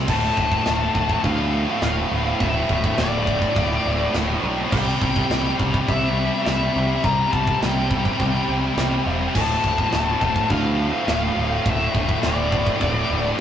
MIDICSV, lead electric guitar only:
0, 0, Header, 1, 2, 480
1, 0, Start_track
1, 0, Key_signature, -1, "minor"
1, 0, Tempo, 578592
1, 71, Time_signature, 4, 2, 24, 8
1, 11120, End_track
2, 0, Start_track
2, 0, Title_t, "Lead electric guitar"
2, 0, Program_c, 0, 29
2, 78, Note_on_c, 0, 81, 122
2, 1036, Note_on_c, 0, 77, 104
2, 1066, Note_off_c, 0, 81, 0
2, 1506, Note_off_c, 0, 77, 0
2, 1516, Note_on_c, 0, 77, 89
2, 1990, Note_off_c, 0, 77, 0
2, 1993, Note_on_c, 0, 76, 111
2, 2474, Note_off_c, 0, 76, 0
2, 2478, Note_on_c, 0, 74, 84
2, 3406, Note_off_c, 0, 74, 0
2, 3914, Note_on_c, 0, 79, 127
2, 4604, Note_off_c, 0, 79, 0
2, 4886, Note_on_c, 0, 76, 98
2, 5329, Note_off_c, 0, 76, 0
2, 5357, Note_on_c, 0, 76, 89
2, 5840, Note_on_c, 0, 82, 119
2, 5852, Note_off_c, 0, 76, 0
2, 6070, Note_off_c, 0, 82, 0
2, 6074, Note_on_c, 0, 81, 108
2, 6312, Note_off_c, 0, 81, 0
2, 6315, Note_on_c, 0, 79, 81
2, 7482, Note_off_c, 0, 79, 0
2, 7759, Note_on_c, 0, 81, 120
2, 8726, Note_on_c, 0, 77, 106
2, 8744, Note_off_c, 0, 81, 0
2, 9203, Note_off_c, 0, 77, 0
2, 9213, Note_on_c, 0, 77, 90
2, 9649, Note_off_c, 0, 77, 0
2, 9699, Note_on_c, 0, 76, 109
2, 10132, Note_off_c, 0, 76, 0
2, 10168, Note_on_c, 0, 74, 84
2, 11084, Note_off_c, 0, 74, 0
2, 11120, End_track
0, 0, End_of_file